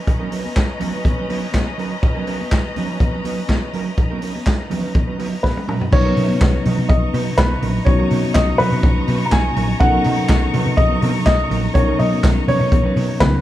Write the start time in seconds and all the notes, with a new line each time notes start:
Already playing: C#4 B4 D#5 A#5
0.07 muted clean electric guitar stroke, kick, closed hi-hat, muted conga
0.20 F#3 C#4 D#4 A#4, high conga
0.31 F#3 C#4 D#4 A#4, open hi-hat
0.44 muted clean electric guitar stroke, high conga
0.55 muted clean electric guitar stroke, kick, snare, clap, closed hi-hat
0.68 muted clean electric guitar stroke
0.79 F#3 C#4 D#4 B4, open hi-hat, high conga, low conga
0.93 F#3 C#4 D#4 B4
1.04 muted clean electric guitar stroke, kick, closed hi-hat, muted conga, high conga, low conga
1.17 F#3 C#4 D#4 B4, muted conga
1.28 F#3 C#4 D#4 B4, open hi-hat, high conga
1.42 muted clean electric guitar stroke
1.52 muted clean electric guitar stroke, kick, snare, clap, closed hi-hat, muted conga, high conga
1.67 muted clean electric guitar stroke, muted conga
1.78 F#3 C#4 D#4 A#4, open hi-hat
1.91 muted clean electric guitar stroke
2.02 muted clean electric guitar stroke, kick, closed hi-hat, muted conga
2.15 F#3 C#4 D#4 A#4, muted conga, high conga
2.27 F#3 C#4 D#4 A#4, open hi-hat
2.40 muted clean electric guitar stroke, high conga
2.52 muted clean electric guitar stroke, kick, snare, clap, closed hi-hat
2.65 muted clean electric guitar stroke, muted conga
2.76 F#3 C#4 D#4 B4, open hi-hat, high conga, low conga
2.89 F#3 C#4 D#4 B4
3.00 kick, closed hi-hat, muted conga, high conga, low conga
3.13 F#3 C#4 D#4 B4, muted conga
3.24 F#3 C#4 D#4 B4, open hi-hat, high conga
3.38 muted clean electric guitar stroke
3.48 muted clean electric guitar stroke, kick, snare, clap, closed hi-hat, high conga
3.63 muted clean electric guitar stroke, muted conga
3.73 F#3 C#4 D#4 A#4, open hi-hat
3.87 muted clean electric guitar stroke
3.97 muted clean electric guitar stroke, kick, closed hi-hat, muted conga, low conga
4.10 F#3 C#4 D#4 A#4, muted conga, high conga
4.22 F#3 C#4 D#4 A#4, open hi-hat
4.35 muted clean electric guitar stroke, high conga
4.46 muted clean electric guitar stroke, kick, snare, clap, closed hi-hat
4.59 muted clean electric guitar stroke, muted conga
4.70 F#3 C#4 D#4 B4, open hi-hat, high conga, low conga
4.83 F#3 C#4 D#4 B4
4.95 muted clean electric guitar stroke, kick, closed hi-hat, muted conga, high conga, low conga
5.07 F#3 C#4 D#4 B4
5.18 F#3 C#4 D#4 B4, open hi-hat, high conga
5.31 muted clean electric guitar stroke
5.43 B4, muted clean electric guitar stroke, kick, snare, muted conga, high conga
5.56 muted clean electric guitar stroke, high tom
5.67 F#3 C#4 D#4 A#4 B4, mid tom
5.81 muted clean electric guitar stroke, floor tom
5.91 B1 F#3 B3 C#4 D#4 B4 C#5 D#5 A#5 C#6, muted clean electric guitar stroke, kick, crash, muted conga, low conga
6.04 F#3 C#4 D#4 A#4, high conga
6.17 B2 F#3 C#4 D#4 A#4, open hi-hat
6.29 muted clean electric guitar stroke, high conga
6.41 B1, kick, snare, clap, closed hi-hat
6.53 muted clean electric guitar stroke, muted conga
6.65 B2 F#3 C#4 D#4 B4, open hi-hat, high conga, low conga
6.78 B2 F#3 C#4 D#4 B4
6.89 B1 D#5, kick, closed hi-hat, muted conga, high conga, low conga
7.02 muted clean electric guitar stroke, muted conga
7.13 B2 F#3 C#4 D#4 B4, open hi-hat, high conga
7.26 muted clean electric guitar stroke
7.37 B1 B4, muted clean electric guitar stroke, kick, snare, clap, closed hi-hat, muted conga, high conga
7.50 muted clean electric guitar stroke, muted conga
7.61 A#1 F#3 C#4 D#4 A#4, open hi-hat
7.74 muted clean electric guitar stroke
7.85 B1 F#3 B3 C#4 D#4 F#4 C#5, muted clean electric guitar stroke, kick, closed hi-hat, muted conga, low conga
7.98 F#3 C#4 D#4 A#4, muted conga, high conga
8.10 B2 F#3 C#4 D#4 A#4, open hi-hat
8.23 muted clean electric guitar stroke, high conga
8.34 B1 D#5, kick, snare, clap, closed hi-hat, muted conga
8.48 muted clean electric guitar stroke
8.58 B2 F#3 C#4 D#4 B4, open hi-hat, high conga, low conga
8.71 B2 F#3 C#4 D#4 B4
8.83 B1, kick, closed hi-hat, high conga, low conga
8.96 F#3 C#4 D#4 B4, muted conga
9.07 B2 F#3 C#4 D#4 B4, open hi-hat, high conga
9.21 muted clean electric guitar stroke
9.26 A#5
9.31 B1 G#5, muted clean electric guitar stroke, kick, snare, clap, closed hi-hat, high conga
9.45 muted clean electric guitar stroke
9.56 A#1 F#3 C#4 D#4 A#4, open hi-hat
9.69 muted clean electric guitar stroke
9.79 B1 F#3 B3 C#4 D#4 A4 F#5, muted clean electric guitar stroke, kick, closed hi-hat, muted conga, low conga
9.88 A#4
9.93 F#3 C#4 D#4 A#4, high conga
10.04 B2 F#3 C#4 D#4 A#4, open hi-hat
10.18 muted clean electric guitar stroke, high conga
10.29 B1, kick, snare, clap, closed hi-hat
10.42 muted clean electric guitar stroke, muted conga
10.53 B2 F#3 C#4 D#4 B4, open hi-hat, high conga, low conga
10.66 B2 F#3 C#4 D#4 B4
10.77 B1 D#5, muted clean electric guitar stroke, kick, closed hi-hat, high conga, low conga
10.91 F#3 C#4 D#4 B4
11.01 B2 F#3 C#4 D#4 B4, open hi-hat, high conga
11.15 muted clean electric guitar stroke
11.25 B1 D#5, muted clean electric guitar stroke, kick, snare, clap, closed hi-hat, high conga
11.39 muted clean electric guitar stroke, muted conga
11.50 A#1 F#3 C#4 D#4 A#4, open hi-hat
11.64 muted clean electric guitar stroke
11.74 B1 F#3 B3 C#4 D#4 A#4 C#5, kick, closed hi-hat, muted conga
11.88 F#3 C#4 D#4 A#4, muted conga, high conga
11.99 B2 F#3 C#4 D#4 A#4 D#5, open hi-hat
12.12 muted clean electric guitar stroke, high conga
12.24 B1, muted clean electric guitar stroke, kick, snare, clap, closed hi-hat
12.36 muted clean electric guitar stroke
12.47 B2 F#3 C#4 D#4 B4 C#5, open hi-hat, high conga, low conga
12.60 B2 F#3 C#4 D#4 B4
12.72 B1, muted clean electric guitar stroke, kick, closed hi-hat, muted conga, high conga, low conga
12.84 F#3 C#4 D#4 B4
12.96 B2 F#3 C#4 D#4 B4, open hi-hat, high conga
13.09 muted clean electric guitar stroke
13.20 C#2 F#3 B3 C#4 D#4 A#4 B4, muted clean electric guitar stroke, kick, snare, clap, muted conga, high conga
13.33 muted clean electric guitar stroke, muted conga